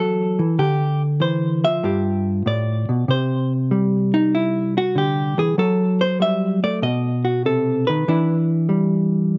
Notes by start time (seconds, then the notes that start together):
Already playing: E3 F#3 D4 E4 A4
0.39 E3
0.59 D3 G4
1.20 E3 C5
1.64 F3 E5
1.83 G2 F4 G4
2.46 A2 D5
2.89 B2
3.08 C3 C5
3.71 G3
4.14 D#4
4.35 E4
4.78 F#4
4.95 D3 G4
5.38 E3 G#4
5.58 F#3 A4
6.01 C5
6.20 G3 E5
6.64 A3 D5
6.82 B2 D#5
7.25 F#4
7.46 C3 A4
7.87 D#3 B4
8.08 E3 D4 E4
8.69 G3